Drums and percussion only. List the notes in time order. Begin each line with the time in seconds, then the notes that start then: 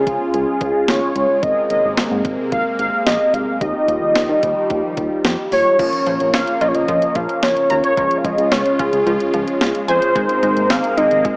0.07 kick, closed hi-hat
0.34 closed hi-hat
0.61 kick, closed hi-hat
0.88 snare, closed hi-hat
1.16 closed hi-hat
1.43 kick, closed hi-hat
1.70 closed hi-hat
1.97 snare, closed hi-hat
2.25 kick, closed hi-hat
2.52 kick, closed hi-hat
2.79 closed hi-hat
3.07 snare, closed hi-hat
3.34 closed hi-hat
3.61 kick, closed hi-hat
3.88 closed hi-hat
4.15 snare, closed hi-hat
4.43 kick, closed hi-hat
4.70 kick, closed hi-hat
4.97 kick, closed hi-hat
5.25 snare, closed hi-hat
5.52 open hi-hat
5.79 kick, closed hi-hat, crash
5.93 closed hi-hat
6.07 closed hi-hat
6.20 closed hi-hat
6.34 snare, closed hi-hat
6.47 closed hi-hat
6.61 closed hi-hat
6.75 closed hi-hat
6.88 kick, closed hi-hat
7.02 closed hi-hat
7.15 kick, closed hi-hat
7.29 closed hi-hat
7.43 snare, closed hi-hat
7.57 closed hi-hat
7.70 closed hi-hat
7.84 closed hi-hat
7.97 kick, closed hi-hat
8.11 closed hi-hat
8.25 kick, closed hi-hat
8.38 closed hi-hat
8.52 snare, closed hi-hat
8.66 closed hi-hat
8.79 kick, closed hi-hat
8.93 closed hi-hat
9.07 closed hi-hat
9.20 closed hi-hat
9.34 closed hi-hat
9.48 closed hi-hat
9.61 snare, closed hi-hat
9.75 closed hi-hat
9.88 closed hi-hat
10.02 closed hi-hat
10.16 kick, closed hi-hat
10.29 closed hi-hat
10.43 closed hi-hat
10.57 closed hi-hat
10.70 snare, closed hi-hat
10.84 closed hi-hat
10.98 closed hi-hat
11.11 closed hi-hat
11.25 kick, closed hi-hat